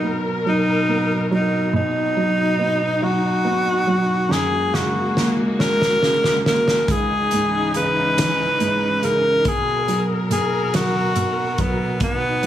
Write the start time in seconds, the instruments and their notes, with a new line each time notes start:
Already playing: upright piano B2 F#3, string section B2 F#3 A#4, tenor saxophone D#4
0.03 upright piano B3
0.46 upright piano F#3, tenor saxophone D#4
0.88 upright piano B3
1.31 upright piano F#3, tenor saxophone D#4
1.73 upright piano B2, string section D#4, tenor saxophone D#4
2.17 upright piano F#3
2.59 upright piano B3
3.02 upright piano F#3, tenor saxophone F#4
3.45 upright piano B3
3.87 upright piano F#3
4.29 upright piano F#2, string section G#3 A#3 F#4, tenor saxophone G#4, snare
4.73 upright piano C#3, tenor saxophone F#4, snare
5.17 upright piano A#3, snare
5.59 upright piano C#4, tenor saxophone A#4, snare
5.82 snare
6.02 upright piano C#3, snare
6.24 snare
6.45 upright piano A#3, tenor saxophone A#4, snare
6.68 snare
6.88 upright piano C#2, string section E3 C#4 D#4, tenor saxophone G#4, kick, closed hi-hat
7.31 upright piano G#2, closed hi-hat
7.74 upright piano C#3, tenor saxophone B4, closed hi-hat
8.17 upright piano E3, snare, closed hi-hat
8.60 upright piano G#2, closed hi-hat
9.02 upright piano C#3, tenor saxophone A#4, closed hi-hat
9.45 upright piano B2, string section B2 F#3 A#4, tenor saxophone G#4, kick, closed hi-hat
9.88 upright piano F#3, closed hi-hat
10.30 upright piano B2, tenor saxophone G#4, closed hi-hat
10.74 upright piano F#3, tenor saxophone F#4, snare, closed hi-hat
11.16 upright piano B2, closed hi-hat
11.58 upright piano F#3, tenor saxophone B3, kick, closed hi-hat
12.00 upright piano B2, tenor saxophone B3, string section D#4, kick, closed hi-hat
12.43 upright piano F#3, closed hi-hat